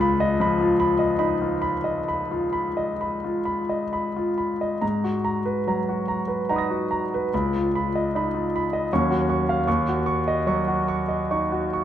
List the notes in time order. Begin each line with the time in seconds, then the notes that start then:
Already playing: C#2 F4
0.00 B5
0.20 D#5
0.40 F3 B5
0.61 F4
0.80 B5
0.99 D#5
1.19 D#4 B5
1.42 F4
1.62 B5
1.84 D#5
2.08 B5
2.31 F4
2.53 B5
2.77 D#5
3.01 B5
3.24 F4
3.45 B5
3.69 D#5
3.93 B5
4.16 F4
4.38 B5
4.61 D#5
4.81 G#2 A#5
5.04 F#4
5.24 A#5
5.45 B4
5.67 F#3 A#5
5.89 F#4
6.08 A#5
6.28 B4
6.49 D#4 F#5 A#5 B5
6.56 D#6 A#6
6.70 F#4
6.91 A#5
7.14 B4
7.34 C#2 B5
7.56 F4
7.75 B5
7.95 D#5
8.15 D#4 B5
8.35 F4
8.56 B5
8.73 D#5
8.93 D#2 F#3 C#4 C#6
9.10 F#4
9.29 C#6
9.49 F5
9.67 D#2 C#6
9.89 F#4
10.06 C#6
10.28 D#5
10.47 F#3 C#6
10.68 F#4
10.88 C#6
11.08 D#5
11.31 D#4 C#6
11.52 F#4
11.73 C#6